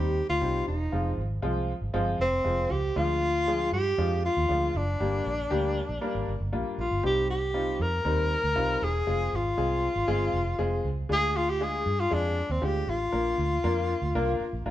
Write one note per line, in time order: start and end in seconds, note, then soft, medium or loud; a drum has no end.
0.00 0.20 D#2 medium
0.00 0.19 G3 medium
0.00 0.19 C4 medium
0.00 0.19 D#4 medium
0.00 0.19 G4 medium
0.00 0.29 G4 medium
0.30 0.39 D2 medium
0.30 0.65 F4 medium
0.42 0.61 C2 medium
0.42 0.70 G3 medium
0.42 0.70 C4 medium
0.42 0.70 D#4 medium
0.42 0.70 G4 medium
0.68 0.87 E1 medium
0.68 1.15 D#4 medium
0.92 1.12 F1 loud
0.92 1.21 F3 medium
0.92 1.21 G#3 medium
0.92 1.21 C4 medium
0.92 1.20 F4 medium
1.18 1.37 G#1 medium
1.42 1.73 C2 medium
1.42 1.71 F3 medium
1.42 1.71 G#3 medium
1.42 1.71 C4 medium
1.42 1.71 F4 medium
1.82 1.91 G#1 medium
1.94 2.14 G1 medium
1.94 2.22 F3 medium
1.94 2.22 G#3 medium
1.94 2.22 C4 medium
1.94 2.22 F4 medium
2.19 2.39 F1 medium
2.19 2.73 C4 medium
2.45 2.65 F1 medium
2.45 2.73 F3 medium
2.45 2.73 G#3 medium
2.45 2.73 C4 medium
2.45 2.73 F4 medium
2.71 2.91 C#2 medium
2.71 2.99 G4 medium
2.96 3.69 D2 medium
2.96 3.24 F3 medium
2.96 3.24 G#3 medium
2.96 3.24 D4 medium
2.96 3.24 F4 medium
2.96 3.73 F4 loud
3.47 3.75 F3 medium
3.47 3.75 G#3 medium
3.47 3.76 D4 medium
3.47 3.75 G#4 medium
3.72 3.92 G2 medium
3.72 4.20 G4 loud
3.98 4.28 F2 medium
3.98 4.26 F3 medium
3.98 4.26 G#3 medium
3.98 4.26 D4 medium
3.98 4.26 F4 medium
4.25 4.78 F4 medium
4.37 4.46 D#2 medium
4.49 4.69 D2 medium
4.49 4.77 F3 medium
4.49 4.77 G#3 medium
4.49 4.77 D4 medium
4.49 4.77 F4 medium
4.74 4.94 F#1 medium
4.74 6.52 D4 medium
5.00 5.20 G1 medium
5.00 5.28 G3 medium
5.00 5.28 A#3 medium
5.00 5.28 D4 medium
5.00 5.28 G4 medium
5.26 5.45 A#1 medium
5.50 5.81 D2 medium
5.50 5.79 G3 medium
5.50 5.79 A#3 medium
5.50 5.79 D4 medium
5.50 5.79 G4 medium
5.89 5.99 A#1 medium
6.01 6.30 G3 medium
6.01 6.30 A#3 medium
6.01 6.29 D4 medium
6.01 6.30 A#4 medium
6.15 6.24 G#1 medium
6.28 6.37 G1 medium
6.41 6.50 G1 medium
6.52 6.63 A#1 medium
6.52 6.80 G3 medium
6.52 6.81 A#3 medium
6.52 6.80 D4 medium
6.52 6.81 F4 medium
6.78 6.88 A#1 medium
6.78 7.03 F4 medium
6.91 7.01 G1 medium
7.03 7.76 C2 medium
7.03 7.31 G3 medium
7.03 7.31 C4 medium
7.03 7.31 D#4 medium
7.03 7.31 G4 medium
7.03 7.29 G4 medium
7.30 7.83 G4 medium
7.54 7.82 G3 medium
7.54 7.82 C4 medium
7.54 7.82 D#4 medium
7.54 7.82 F4 medium
7.80 7.99 F2 medium
7.80 8.85 A#4 loud
8.05 8.35 D#2 medium
8.05 8.33 G3 medium
8.05 8.33 C4 medium
8.05 8.33 D#4 medium
8.05 8.33 A#4 medium
8.44 8.53 D2 medium
8.55 8.76 C2 medium
8.55 8.84 G3 medium
8.55 8.84 C4 medium
8.55 8.84 D#4 medium
8.55 8.84 F4 medium
8.82 9.01 E1 medium
8.82 9.37 G#4 medium
9.07 9.27 F1 medium
9.07 9.35 G#3 medium
9.07 9.35 C4 medium
9.07 9.35 F4 medium
9.07 9.35 G#4 medium
9.33 9.52 G#1 medium
9.33 10.86 F4 medium
9.57 9.87 C2 medium
9.57 9.85 G#3 medium
9.57 9.86 C4 medium
9.57 9.86 F4 medium
9.57 9.86 G#4 medium
9.96 10.06 G#1 medium
10.08 10.28 G1 medium
10.08 10.36 G#3 medium
10.08 10.36 C4 medium
10.08 10.36 F4 medium
10.08 10.36 G#4 loud
10.33 10.53 F1 medium
10.59 10.79 F1 medium
10.59 10.87 G#3 medium
10.59 10.87 C4 medium
10.59 10.87 F4 medium
10.59 10.87 G#4 medium
10.84 11.04 C#2 medium
11.09 11.82 D2 loud
11.09 11.38 G#3 medium
11.09 11.38 D4 medium
11.09 11.38 F4 medium
11.09 11.38 G#4 medium
11.09 11.38 G#4 loud
11.37 11.51 F4 medium
11.50 11.64 G4 medium
11.61 11.89 G#3 medium
11.61 11.89 D4 medium
11.61 11.89 F4 medium
11.61 11.89 G#4 medium
11.61 12.02 G#4 medium
11.86 12.06 G2 medium
12.00 12.15 F4 medium
12.11 12.41 F2 medium
12.11 12.39 G#3 medium
12.11 12.39 D4 medium
12.11 12.53 D4 medium
12.11 12.39 F4 medium
12.11 12.39 G#4 medium
12.50 12.59 D#2 medium
12.50 12.66 C4 medium
12.62 12.82 D2 medium
12.62 12.90 G#3 medium
12.62 12.90 D4 medium
12.62 12.90 F4 medium
12.62 12.90 G4 medium
12.62 12.91 G4 medium
12.87 13.07 A1 medium
12.87 14.66 F4 medium
13.12 13.33 A#1 medium
13.12 13.41 A#3 medium
13.12 13.41 D4 medium
13.12 13.41 F4 medium
13.12 13.41 A#4 medium
13.38 13.58 D2 loud
13.64 13.93 F2 medium
13.64 13.92 A#3 medium
13.64 13.92 D4 medium
13.64 13.92 F4 medium
13.64 13.92 A#4 medium
14.02 14.12 D2 medium
14.15 14.34 C2 medium
14.15 14.43 A#3 medium
14.15 14.43 D4 medium
14.15 14.43 F4 medium
14.15 14.43 A#4 medium
14.41 muted fingered electric bass stroke soft
14.53 14.63 A#1 medium
14.66 14.71 A#1 medium
14.66 14.71 A#3 medium
14.66 14.71 D4 medium
14.66 14.71 F4 medium
14.66 14.71 A#4 medium